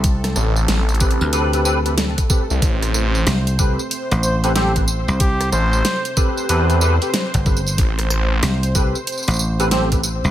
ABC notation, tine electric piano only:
X:1
M:4/4
L:1/16
Q:"Swing 16ths" 1/4=93
K:Am
V:1 name="Tine electric piano"
z6 [CGAB]2 [CGAB] [CGAB] [CGAB] [CGAB] z2 [CGAB] z | z6 [CGAB] z4 [CGAB] [CGAc] [CGAB] z2 | z6 [CGAB]2 [CGAB] [CGAB] [CGAB] [CGAB] z2 [CGAB] z | z6 [CGAB] z4 [CGAB] [CGAc] [CGAB] z2 |]